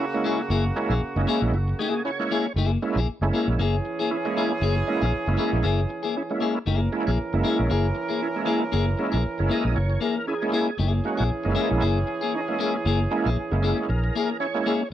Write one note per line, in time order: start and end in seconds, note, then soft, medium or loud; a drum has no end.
0.00 2.27 C#3 medium
0.00 2.27 A#3 medium
0.00 2.26 F#4 medium
0.14 0.42 G#3 medium
0.14 0.42 A#3 medium
0.14 0.42 C#4 medium
0.14 0.42 E4 medium
0.14 muted clean electric guitar stroke soft
0.24 0.40 A#3 medium
0.24 0.40 E4 medium
0.24 0.39 G#4 loud
0.40 muted clean electric guitar stroke medium
0.50 0.70 F#1 loud
0.50 0.66 A#3 medium
0.50 0.65 E4 medium
0.50 0.64 G#4 loud
0.65 muted clean electric guitar stroke soft
0.76 0.94 G#3 loud
0.76 0.94 A#3 medium
0.76 0.94 C#4 medium
0.76 0.94 E4 loud
0.76 muted clean electric guitar stroke soft
0.90 0.98 A#1 loud
0.90 1.01 A#3 soft
0.90 1.01 E4 medium
0.90 1.00 G#4 medium
1.16 1.25 F#1 medium
1.16 1.54 G#3 medium
1.16 1.54 A#3 medium
1.16 1.55 C#4 medium
1.16 1.22 D#4 medium
1.16 muted clean electric guitar stroke soft
1.23 1.58 E4 medium
1.27 1.43 A#3 medium
1.27 1.42 E4 loud
1.27 1.41 G#4 medium
1.42 1.50 A#1 medium
1.42 muted clean electric guitar stroke soft
1.52 1.72 F#1 loud
1.52 muted clean electric guitar stroke soft
1.68 muted clean electric guitar stroke soft
1.79 2.00 A#3 medium
1.79 1.94 E4 medium
1.79 2.03 G#4 medium
1.79 1.94 G#4 medium
1.95 muted clean electric guitar stroke soft
2.05 2.11 C#4 medium
2.05 2.11 E4 loud
2.05 2.53 C#5 medium
2.19 2.47 G#3 medium
2.19 2.47 A#3 medium
2.19 2.47 C#4 medium
2.19 2.47 E4 medium
2.19 muted clean electric guitar stroke soft
2.31 2.46 A#3 medium
2.31 2.46 E4 medium
2.31 2.45 G#4 medium
2.46 muted clean electric guitar stroke soft
2.56 2.75 F#1 loud
2.56 2.77 A#3 medium
2.56 2.71 E4 loud
2.56 2.71 G#4 medium
2.72 muted clean electric guitar stroke soft
2.82 3.00 G#3 loud
2.82 3.00 A#3 medium
2.82 3.00 C#4 medium
2.82 3.00 E4 loud
2.82 muted clean electric guitar stroke soft
2.96 3.04 A#1 loud
2.96 3.07 A#3 medium
2.96 3.07 E4 medium
2.96 3.06 G#4 medium
3.21 3.30 F#1 loud
3.21 3.60 G#3 medium
3.21 3.27 A3 medium
3.21 3.60 C#4 medium
3.21 3.61 E4 medium
3.21 muted clean electric guitar stroke medium
3.29 3.63 A#3 medium
3.34 3.49 A#3 medium
3.34 3.48 E4 medium
3.34 3.47 G#4 medium
3.48 3.56 A#1 medium
3.48 muted clean electric guitar stroke soft
3.58 3.78 F#1 loud
3.58 6.38 E3 medium
3.58 3.75 A#3 medium
3.58 6.38 C#4 medium
3.58 3.75 E4 medium
3.58 6.38 G#4 loud
3.58 3.76 G#4 medium
3.85 muted clean electric guitar stroke soft
3.99 4.10 A#3 medium
3.99 4.09 E4 medium
3.99 4.09 G#4 medium
4.11 4.17 C#4 medium
4.11 4.17 E4 loud
4.25 4.53 G#3 medium
4.25 4.53 A#3 medium
4.25 4.53 C#4 medium
4.25 4.53 E4 medium
4.25 muted clean electric guitar stroke soft
4.37 4.52 A#3 medium
4.37 4.52 E4 medium
4.37 4.50 G#4 loud
4.51 muted clean electric guitar stroke soft
4.61 4.81 F#1 loud
4.61 4.77 A#3 medium
4.61 4.76 E4 medium
4.61 4.75 G#4 medium
4.76 muted clean electric guitar stroke soft
4.87 5.06 G#3 loud
4.87 5.06 A#3 medium
4.87 5.06 C#4 medium
4.87 5.06 E4 loud
4.87 muted clean electric guitar stroke soft
5.02 5.11 A#1 loud
5.02 5.12 A#3 soft
5.02 5.12 E4 medium
5.02 5.11 G#4 medium
5.27 5.36 F#1 medium
5.27 5.66 G#3 medium
5.27 5.66 A#3 medium
5.27 5.66 C#4 medium
5.27 5.66 E4 medium
5.27 muted clean electric guitar stroke medium
5.37 5.54 A#3 medium
5.37 5.52 E4 medium
5.37 5.50 G#4 medium
5.52 5.62 A#1 medium
5.52 muted clean electric guitar stroke soft
5.63 5.84 F#1 loud
5.63 5.79 A#3 medium
5.63 5.80 E4 loud
5.63 5.80 G#4 loud
5.89 muted clean electric guitar stroke soft
6.03 6.14 A#3 medium
6.03 6.14 E4 medium
6.03 6.13 G#4 medium
6.17 6.23 C#4 medium
6.17 6.23 E4 loud
6.30 6.58 G#3 medium
6.30 6.59 A#3 medium
6.30 6.59 C#4 medium
6.30 6.59 E4 medium
6.30 muted clean electric guitar stroke soft
6.40 6.57 A#3 medium
6.40 6.55 E4 medium
6.40 6.54 G#4 loud
6.55 muted clean electric guitar stroke soft
6.66 6.87 F#1 loud
6.66 10.51 E3 medium
6.66 6.87 A#3 medium
6.66 10.50 C#4 medium
6.66 6.81 E4 loud
6.66 6.79 G#4 medium
6.66 10.50 A#4 medium
6.81 muted clean electric guitar stroke soft
6.92 7.11 G#3 medium
6.92 7.11 A#3 medium
6.92 7.11 C#4 medium
6.92 7.11 E4 loud
6.92 muted clean electric guitar stroke soft
7.07 7.16 A#1 medium
7.07 7.18 A#3 medium
7.07 7.18 E4 medium
7.07 7.17 G#4 medium
7.33 7.42 F#1 medium
7.33 7.72 G#3 medium
7.33 7.72 A#3 medium
7.33 7.72 C#4 medium
7.33 7.72 E4 loud
7.33 muted clean electric guitar stroke soft
7.44 7.60 A#3 medium
7.44 7.58 E4 loud
7.44 7.57 G#4 loud
7.58 7.68 A#1 medium
7.58 muted clean electric guitar stroke soft
7.70 7.90 F#1 loud
7.70 7.86 A#3 medium
7.70 7.86 E4 medium
7.70 7.86 G#4 loud
7.95 muted clean electric guitar stroke soft
8.09 8.20 A#3 medium
8.09 8.20 E4 medium
8.09 8.19 G#4 medium
8.22 8.28 C#4 medium
8.22 8.29 E4 medium
8.35 8.64 G#3 medium
8.35 8.64 A#3 medium
8.35 8.64 C#4 medium
8.35 8.64 E4 medium
8.35 muted clean electric guitar stroke soft
8.46 8.62 A#3 medium
8.46 8.61 E4 loud
8.46 8.60 G#4 medium
8.61 muted clean electric guitar stroke medium
8.72 8.93 F#1 loud
8.72 8.88 A#3 medium
8.72 8.86 E4 medium
8.72 8.85 G#4 medium
8.86 muted clean electric guitar stroke soft
8.98 9.17 G#3 medium
8.98 9.17 A#3 medium
8.98 9.17 C#4 medium
8.98 9.17 E4 medium
8.98 muted clean electric guitar stroke soft
9.12 9.22 A#1 loud
9.12 9.23 A#3 medium
9.12 9.23 E4 medium
9.12 9.22 G#4 medium
9.38 9.48 F#1 loud
9.38 9.78 G#3 medium
9.38 9.78 A#3 medium
9.38 9.78 C#4 medium
9.38 9.78 E4 medium
9.38 muted clean electric guitar stroke soft
9.49 9.66 A#3 medium
9.49 9.64 E4 medium
9.49 9.63 G#4 medium
9.49 9.75 D#5 medium
9.64 9.74 A#1 medium
9.64 muted clean electric guitar stroke soft
9.75 9.96 F#1 loud
9.75 10.00 C#5 medium
9.75 muted clean electric guitar stroke soft
9.90 muted clean electric guitar stroke soft
10.01 10.17 A#3 medium
10.01 10.16 E4 medium
10.01 10.15 G#4 medium
10.01 10.26 A#4 medium
10.16 muted clean electric guitar stroke medium
10.27 10.34 C#4 medium
10.27 10.35 E4 loud
10.27 10.52 G#4 medium
10.42 10.70 G#3 medium
10.42 10.71 A#3 medium
10.42 10.70 C#4 medium
10.42 10.71 E4 medium
10.42 muted clean electric guitar stroke soft
10.52 10.69 A#3 medium
10.52 10.68 E4 loud
10.52 10.78 G#4 medium
10.52 10.67 G#4 loud
10.68 muted clean electric guitar stroke medium
10.78 10.99 F#1 loud
10.78 14.63 E3 medium
10.78 11.00 A#3 medium
10.78 14.63 C#4 medium
10.78 10.93 E4 medium
10.78 14.63 G#4 medium
10.78 10.92 G#4 medium
10.93 muted clean electric guitar stroke soft
11.04 11.23 G#3 medium
11.04 11.23 A#3 medium
11.04 11.23 C#4 medium
11.04 11.24 F#4 loud
11.04 muted clean electric guitar stroke soft
11.17 11.29 A#1 loud
11.17 11.29 A#3 soft
11.17 11.29 E4 medium
11.17 11.28 G#4 medium
11.44 11.54 F#1 medium
11.44 11.84 G#3 medium
11.44 11.84 A#3 medium
11.44 11.84 C#4 medium
11.44 11.51 D#4 medium
11.44 muted clean electric guitar stroke medium
11.52 11.72 A#3 medium
11.52 11.87 E4 loud
11.52 11.70 E4 loud
11.56 11.69 G#4 loud
11.70 11.80 A#1 medium
11.70 muted clean electric guitar stroke soft
11.81 12.02 F#1 loud
11.81 11.97 A#3 medium
11.81 11.98 E4 medium
11.81 11.98 G#4 medium
12.07 muted clean electric guitar stroke soft
12.21 12.33 A#3 medium
12.21 12.33 E4 medium
12.21 12.32 G#4 medium
12.34 12.41 C#4 loud
12.34 12.41 D#4 loud
12.48 12.77 G#3 medium
12.48 12.77 A#3 medium
12.48 12.77 C#4 medium
12.48 12.77 E4 medium
12.48 muted clean electric guitar stroke soft
12.59 12.75 A#3 medium
12.59 12.74 E4 medium
12.59 12.73 G#4 loud
12.74 muted clean electric guitar stroke medium
12.86 13.05 F#1 loud
12.86 13.01 A#3 medium
12.86 13.00 E4 medium
12.86 12.99 G#4 medium
13.00 muted clean electric guitar stroke soft
13.11 13.30 G#3 medium
13.11 13.30 A#3 medium
13.11 13.30 C#4 medium
13.11 13.30 E4 loud
13.11 muted clean electric guitar stroke soft
13.26 13.35 A#1 medium
13.26 13.37 A#3 soft
13.26 13.37 E4 medium
13.26 13.36 G#4 medium
13.37 muted fingered electric bass stroke soft
13.51 13.72 F#1 loud
13.51 13.90 G#3 medium
13.51 13.90 A#3 medium
13.51 13.90 C#4 medium
13.51 13.90 E4 medium
13.51 muted clean electric guitar stroke soft
13.62 13.79 A#3 medium
13.62 13.78 E4 medium
13.62 13.87 G#4 medium
13.62 13.77 G#4 loud
13.78 muted clean electric guitar stroke medium
13.89 14.09 A#1 medium
13.89 14.37 A#4 medium
13.89 muted clean electric guitar stroke soft
14.04 muted clean electric guitar stroke soft
14.15 14.31 A#3 medium
14.15 14.30 E4 loud
14.15 14.28 G#4 loud
14.30 muted clean electric guitar stroke medium
14.40 14.47 C#4 medium
14.40 14.47 E4 loud
14.40 14.89 C#5 medium
14.54 14.83 G#3 medium
14.54 14.83 A#3 medium
14.54 14.83 C#4 medium
14.54 14.83 E4 medium
14.54 muted clean electric guitar stroke soft
14.66 14.82 A#3 medium
14.66 14.81 E4 loud
14.66 14.80 G#4 loud
14.81 muted clean electric guitar stroke soft